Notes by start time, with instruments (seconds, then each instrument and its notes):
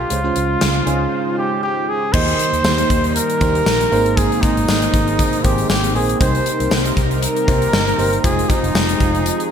Already playing: fm electric piano A3 D4 G4 A4 B4, flugelhorn F4
0.10 fingered electric bass C#2, analog synth pad C#3 G#3 D#4 F4 C5, fm electric piano C#3 G#3 C#4 F4 C5, closed hi-hat
0.24 fm electric piano G#3 C#4 F4 C5
0.36 fingered electric bass C#2, closed hi-hat
0.61 fingered electric bass C#2, snare, closed hi-hat
0.86 fingered electric bass C#2, fm electric piano G#3 C#4 F4 G#4, closed hi-hat
1.38 flugelhorn G4
1.63 flugelhorn G4
1.89 flugelhorn G#4
2.13 fingered electric bass D#2, analog polysynth D#3 A#3 G4, fm electric piano D#3 A#3 D#4 G4 D#5, analog synth pad G3 A#3 D#4, flugelhorn C5, kick, crash
2.28 closed hi-hat
2.39 closed hi-hat
2.53 fingered electric bass D#2, closed hi-hat
2.64 fingered electric bass D#2, snare, tambourine
2.78 closed hi-hat
2.90 fingered electric bass D#2, kick, closed hi-hat
3.04 closed hi-hat
3.15 flugelhorn A#4, closed hi-hat
3.30 closed hi-hat
3.40 fingered electric bass D#2, fm electric piano A#3 D#4 G4 C5, kick, closed hi-hat
3.55 closed hi-hat
3.66 fingered electric bass A#1, snare, tambourine
3.81 closed hi-hat
3.91 fingered electric bass G#1, fm electric piano G#2 A#3 D#4 G#4 C5, analog polysynth D#3 C4 G#4, analog synth pad G#3 C4, open hi-hat
4.06 closed hi-hat
4.17 flugelhorn G#4, kick, closed hi-hat
4.32 closed hi-hat
4.42 flugelhorn D#4, kick, closed hi-hat
4.57 fingered electric bass G#1, closed hi-hat
4.68 fingered electric bass G#1, snare, tambourine
4.82 closed hi-hat
4.94 fingered electric bass G#1, kick, closed hi-hat
5.08 closed hi-hat
5.19 kick, closed hi-hat
5.33 closed hi-hat
5.44 fingered electric bass G#1, fm electric piano A#3 D#4 G#4 C5, flugelhorn G4, kick, closed hi-hat
5.58 closed hi-hat
5.70 fingered electric bass G#1, flugelhorn G4, snare, tambourine
5.84 closed hi-hat
5.94 fingered electric bass A#1, fm electric piano A#3 D#4 G#4 C5, flugelhorn G#4, open hi-hat
6.09 closed hi-hat
6.20 fingered electric bass C2, fm electric piano C3 A#3 D#4 G4 C5, analog synth pad C3 D#4 G4 A#4, analog polysynth G3 D#4 A#4, flugelhorn C5, kick, closed hi-hat
6.35 closed hi-hat
6.46 closed hi-hat
6.60 fingered electric bass C2, closed hi-hat
6.71 fingered electric bass C2, snare, tambourine
6.85 closed hi-hat
6.97 fingered electric bass C2, kick, closed hi-hat
7.11 closed hi-hat
7.23 flugelhorn A#4, closed hi-hat
7.36 closed hi-hat
7.47 fingered electric bass C2, fm electric piano A#3 D#4 G4 C5, kick, closed hi-hat
7.62 closed hi-hat
7.73 fingered electric bass G1, snare, tambourine
7.88 closed hi-hat
7.98 fingered electric bass G1, fm electric piano A#3 D#4 G4 C5, open hi-hat
8.13 closed hi-hat
8.24 fingered electric bass F1, analog synth pad F3 G#4, fm electric piano G#3 D#4 F4 C5, analog polysynth G#3 F4 C5, flugelhorn G#4, kick, closed hi-hat
8.39 closed hi-hat
8.50 flugelhorn D#4, kick, closed hi-hat
8.63 fingered electric bass F1, closed hi-hat
8.75 fingered electric bass F1, snare, tambourine
8.89 closed hi-hat
9.00 fingered electric bass F1, kick, closed hi-hat
9.15 closed hi-hat
9.26 closed hi-hat
9.40 closed hi-hat